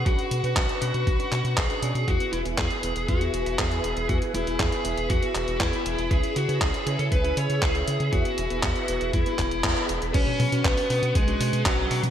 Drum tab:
CC |----------------|----------------|----------------|----------------|
HH |xxxxxxxxxxxxxxxx|xxxxxxxxxxxxxxxx|xxxxxxxxxxxxxxxx|xxxxxxxxxxxxxxxx|
CP |----x-----x-x---|----x-------x---|----x-----x-x---|----x-------x---|
T1 |----------------|----------------|----------------|----------------|
BD |o---o---o---o---|o---o---o---o---|o---o---o---o---|o---o---o---o---|

CC |----------------|x---------------|
HH |xxxxxxxxxxxxxxxx|x-oxxooxxxoxx-ox|
CP |----x-----x-x---|----x-------x---|
T1 |----------------|-oo-------------|
BD |o---o---o-o-o---|o---o---o---o---|